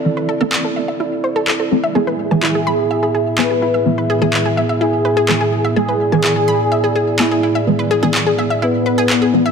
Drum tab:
CP |--x---x-|--x---x-|--x---x-|--x---x-|

CP |--x---x-|